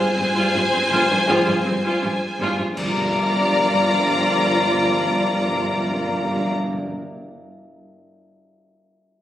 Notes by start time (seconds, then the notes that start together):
Already playing: F4 G#4 C5 G#5 F6 F#6 C7
0.00 G2
0.16 G1 G2 C4
0.33 G2 F4
0.53 G1 G2 F4
0.72 G2 C4
0.91 G1 G2 F4
1.10 G2 F4
1.28 G1 G2 F3 C4 F4 G#4 C5
1.46 G2 F4
1.64 G1 G2 C4
1.84 G2 F4
2.03 G1 G2 F4
2.39 G1 G2 F4
2.59 G2 F4
2.76 G1 G2 F3 G3 D4 F4 A#4 D5 F5 A#5 D6 F6, concert bass drum, crash
2.84 G2
2.90 G2
2.96 G2
3.03 G2
3.09 G2
3.16 G2
3.23 G2
3.29 G2
3.35 G2
3.42 G2
3.49 G2
3.55 G2
3.62 G2
3.70 G2
3.76 G2
3.83 G2
3.90 G2
3.97 G2
4.03 G2
4.10 G2
4.17 G2
4.24 G2
4.30 G2
4.37 G2
4.43 G2
4.50 G2
4.57 G2
4.64 G2
4.71 G2
4.77 G2
4.84 G2
4.90 G2
4.97 G2
5.04 G2
5.10 G2
5.17 G2
5.24 G2
5.31 G2
5.37 G2
5.45 G2
5.51 G2
5.57 G2
5.64 G2
5.71 G2
5.77 G2
5.84 G2
5.90 G2
5.97 G2
6.03 G2
6.10 G2
6.17 G2
6.24 G2
6.31 G2
6.37 G2
6.43 G2
6.50 G2
6.57 G2
6.64 G2
6.70 G2
6.77 G2
6.83 G2